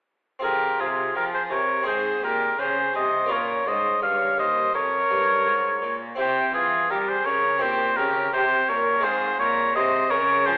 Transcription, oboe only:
0.44 A#4
0.80 G#4
1.17 A#4
1.34 C5
1.52 C#5
1.87 C5
2.24 A#4
2.60 C5
2.96 D#5
3.31 C#5
3.68 D#5
4.03 F5
4.39 D#5
4.75 C#5
6.20 C5
6.54 G#4
6.90 A#4
7.09 C5
7.26 C#5
7.62 C5
7.97 A#4
8.33 C5
8.69 C#5
9.05 C5
9.39 C#5
9.76 D#5
10.10 C#5
10.46 C5

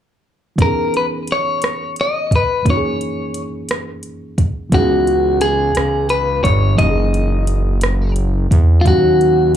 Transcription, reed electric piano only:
0.56 E3 B3 C#4
0.62 D#4 G#4
2.63 F#2 E3 A#3
2.67 C#4 D#4 F#4
2.77 G#4
4.70 E3 B3
4.74 C#4 D#4
4.78 G#4
6.76 E3 A#3
6.80 C#4 D#4 G4
6.90 G#4
8.83 A#2 F#3 C#4
8.88 D#4 F#4

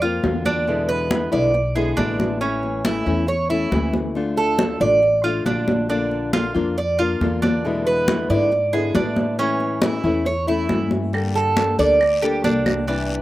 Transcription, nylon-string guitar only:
0.02 A#3 C4 F4
0.23 D3 A#3 C4 F4
0.67 B2 D3 G#3 B3 E4
1.10 D3 G#3 B3 E4
1.32 D3 G#3 B3 E4
1.54 muted nylon-string guitar stroke
1.76 D3 G#3 B3 E4
1.97 D3 G#3 B3 E4
2.41 E3 A3 C#4 E4
2.84 E3 A3 C#4 E4
3.06 A3 C#4 E4
3.27 muted nylon-string guitar stroke
3.49 A3 C#4 E4
3.71 E3 A3 C#4 E4
4.15 D3 A3 D4 F4
4.58 D3 A3 D4 F4
4.80 A3 D4 F4
5.02 muted nylon-string guitar stroke
5.24 A3 D4 F4
5.45 D3 A3 D4 F4
5.89 D3 A#3 D4 F4
6.33 D3 A#3 D4 F4
6.54 A#3 D4 F4
6.78 muted nylon-string guitar stroke
6.99 A#3 D4 F4
7.21 D3 A#3 D4 F4
7.64 B2 D3 G#3 B3 E4
8.07 D3 G#3 B3 E4
8.30 D3 G#3 B3 E4
8.52 muted nylon-string guitar stroke
8.73 D3 G#3 B3 E4
8.95 D3 G#3 B3 E4
9.39 E3 A3 C#4 E4
9.82 E3 A3 C#4 E4
10.04 A3 C#4 E4
10.27 muted nylon-string guitar stroke
10.47 A3 C#4 E4
10.68 E3 A3 C#4 E4
11.13 D3 G3 A#3 D4 A4
11.57 G3 A#3 D4 A4
11.79 G3 A#3 D4 A4
12.01 muted nylon-string guitar stroke
12.23 G3 A#3 D4 A4
12.44 G3 A#3 D4 A4
12.87 C3 E3 G3 D4 E4

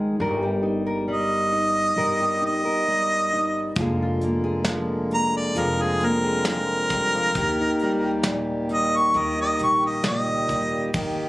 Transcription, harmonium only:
3.75 D3 G#3 A#3
5.55 C4
7.35 D#3 A#3 G4
10.92 D#3 A#3 G4

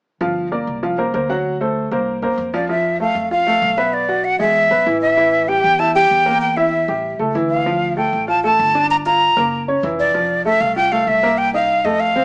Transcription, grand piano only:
0.21 F3 F4 F5
0.52 A#3 A#4 D5
0.83 F3 F4 F5
0.98 A#3 A#4 C5
1.14 A#3 A#4 C5
1.29 F#3 F#4 F#5
1.61 A3 A4 C5
1.92 A#3 A#4 C5
2.23 A#3 A#4 C5
2.54 F3 F4 F5
2.69 F3 F4
3.00 A3 A4
3.31 F4 F5
3.47 A3 A4
3.77 B3 B4
4.09 F#4 F#5
4.39 G#3 G#4
4.70 B3 B4
4.86 E3 E4
5.17 E3 E4
5.48 G3 G4
5.79 E4 E5
5.95 G3 G4
6.26 A#3 A#4
6.57 E4 E5
6.88 G3 G4
7.19 A3 A4
7.35 E3 E4
7.66 F3 F4
7.97 A3 A4
8.28 F4 F5
8.44 A3 A4
8.75 D4 D5
9.06 F4 F5
9.37 A#3 A#4
9.68 C#4 C#5
9.83 E3 E4
10.14 F3 F4
10.45 A3 A4
10.76 F4 F5
10.92 A3 A4
11.23 A#3 A#4
11.54 D#4 D#5
11.85 A3 A4
12.16 C4 C5

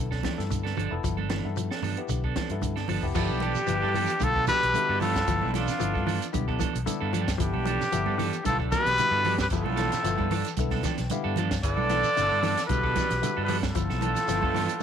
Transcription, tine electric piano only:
0.38 B3 E4 A4
0.91 B3 E4 A4
1.45 B3 E4 A4
1.98 B3 E4 G4
2.51 B3 E4 A4
3.03 B3 E4 G4
3.15 B3 E4 A4
3.66 B3 E4 B4
4.19 B3 E4 A4
4.75 B3 E4 A4
5.28 B3 E4 A4
5.79 B3 E4 A4
6.32 B3 E4 G4
6.86 B3 E4 A4 D5
7.04 F5
7.21 G5
7.39 B3 E4 A4
7.92 B3 E4 A4
8.47 B3 E4 A4
8.99 B3 E4 B4
9.53 B3 E4 A4
10.04 B3 E4 A4
10.59 B3 E4 A4
10.87 G5
11.11 B3 E4 G4 F5
11.65 B3 E4 B4
12.15 B3 E4 B4
12.68 B3 E4 A4
13.22 B3 E4 A4
13.75 B3 E4 A4
14.28 B3 E4 A4

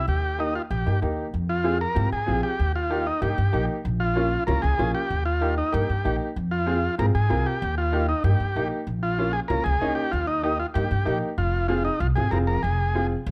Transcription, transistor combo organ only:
0.09 G4
0.40 D#4
0.55 F4
0.71 G4
1.49 F4
1.81 A#4
2.13 G#4
2.43 G4
2.76 F4
3.07 D#4
3.22 G4
4.00 F4
4.47 A#4
4.62 G#4
4.95 G4
5.26 F4
5.58 D#4
5.73 G4
6.51 F4
6.99 A#4
7.15 G#4
7.46 G4
7.78 F4
8.09 D#4
8.24 G4
9.03 F4
9.33 G#4
9.48 A#4
9.64 G#4
9.95 G4
10.11 F4
10.27 D#4
10.44 D#4
10.60 F4
10.74 G4
11.38 F4
11.68 F4
11.85 D#4
12.00 F4
12.16 G#4
12.31 A#4
12.47 A#4
12.63 G#4

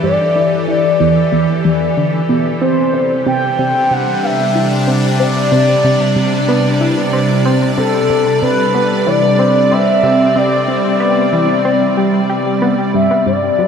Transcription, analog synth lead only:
0.04 D5
0.69 D5
2.62 C5
3.27 G5
3.92 F#5
4.24 E5
5.20 D5
7.79 A4
8.43 B4
9.07 D5
9.72 E5
10.37 D5
11.01 D5
12.95 E5
13.27 D5

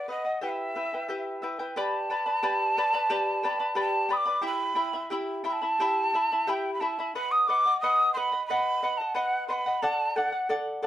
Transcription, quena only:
0.11 D#5
0.44 F#5
0.49 E5
1.79 A5
3.80 A5
4.12 D#6
4.17 D6
4.46 B5
5.49 A5 B5
6.50 G5
6.74 B5
6.80 A5
7.15 B5
7.31 D#6
7.47 D6
7.81 D#6
8.14 B5 C6
8.47 B5
8.97 A5
9.15 F#5
9.48 C6
9.53 B5
9.83 A5
10.16 F#5
10.84 A5

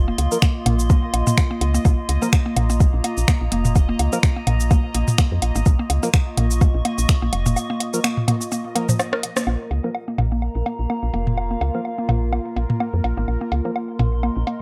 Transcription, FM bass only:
Already playing: F1
0.18 C#2
0.66 A#1
1.14 A#1
1.61 C#2
1.85 A#1
2.09 C#2
2.57 A#1
2.94 A#1
3.18 A#1
3.41 A#1
3.52 F1
3.99 C#2
4.47 A#1
4.95 A#1
5.32 F2
5.42 A#1
5.56 G#1
5.66 A#1
5.90 C#2
6.37 A#1
6.75 A#1
6.98 A#1
7.22 A#1
7.33 F1
9.47 A#1
9.71 C#2
10.18 A#1
10.55 A#1
10.79 A#1
11.03 A#1
11.14 F1
11.61 C#2
12.09 A#1
12.56 A#1
12.94 F2
13.04 A#1
13.17 G#1
13.28 A#1
13.52 C#2
13.99 A#1
14.37 A#1

